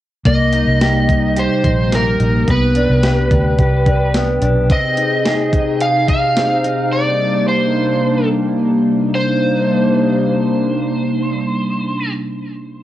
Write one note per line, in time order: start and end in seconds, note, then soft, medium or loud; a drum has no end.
0.25 0.65 C2 medium
0.25 9.10 C3 medium
0.25 2.45 G3 medium
0.25 2.45 A#3 medium
0.25 1.91 A#3 medium
0.25 2.45 D#4 medium
0.25 1.41 D#5 loud
0.25 kick medium
0.25 closed hi-hat medium
0.53 1.08 D#4 medium
0.53 closed hi-hat soft
0.67 1.46 C2 medium
0.81 1.36 G4 medium
0.81 snare loud
0.81 closed hi-hat medium
1.09 1.63 D#4 medium
1.09 kick medium
1.09 closed hi-hat soft
1.36 3.03 G4 medium
1.36 1.95 C5 medium
1.36 closed hi-hat medium
1.64 2.17 A#1 medium
1.64 2.19 D#4 medium
1.64 kick medium
1.64 closed hi-hat soft
1.92 2.48 A#3 soft
1.92 2.50 A#4 medium
1.92 snare medium
1.92 closed hi-hat medium
2.20 2.46 A#1 medium
2.20 2.54 D#4 medium
2.20 closed hi-hat soft
2.48 2.87 C2 medium
2.48 4.13 B3 medium
2.48 4.68 B4 medium
2.48 4.12 B4 medium
2.48 6.88 G5 medium
2.48 kick medium
2.48 closed hi-hat soft
2.75 3.30 D4 medium
2.75 closed hi-hat soft
2.90 3.29 C2 medium
3.03 3.58 G4 medium
3.03 snare loud
3.03 closed hi-hat medium
3.31 3.57 D2 medium
3.31 3.86 D4 soft
3.31 kick medium
3.31 closed hi-hat soft
3.59 4.38 C2 loud
3.59 4.76 G4 medium
3.59 kick medium
3.59 closed hi-hat medium
3.86 4.41 D4 medium
3.86 kick medium
3.86 closed hi-hat soft
4.14 4.69 B3 medium
4.14 snare medium
4.14 closed hi-hat medium
4.42 4.69 B1 medium
4.42 4.76 D4 medium
4.42 closed hi-hat soft
4.70 6.36 C4 medium
4.70 9.10 D#4 medium
4.70 6.90 G#4 medium
4.70 5.81 D#5 medium
4.70 kick medium
4.70 closed hi-hat soft
4.97 5.53 D#4 medium
4.97 closed hi-hat soft
5.25 5.80 G#4 medium
5.25 snare loud
5.25 closed hi-hat medium
5.53 6.08 D#4 soft
5.53 kick medium
5.53 closed hi-hat soft
5.81 6.98 G#4 soft
5.81 6.08 F5 loud
5.81 closed hi-hat medium
6.08 6.64 D#4 medium
6.08 6.95 F5 loud
6.08 kick medium
6.08 closed hi-hat soft
6.36 7.48 C4 soft
6.36 snare medium
6.36 closed hi-hat medium
6.64 7.48 D#4 medium
6.64 closed hi-hat soft
6.92 9.12 G3 medium
6.92 9.12 A#3 medium
6.92 9.12 D4 medium
6.92 7.48 D5 medium
7.48 8.27 C5 medium
9.13 12.12 C3 medium
9.13 12.12 G3 medium
9.13 12.12 A#3 medium
9.13 12.12 D4 medium
9.13 12.12 D#4 medium
9.13 12.13 C5 medium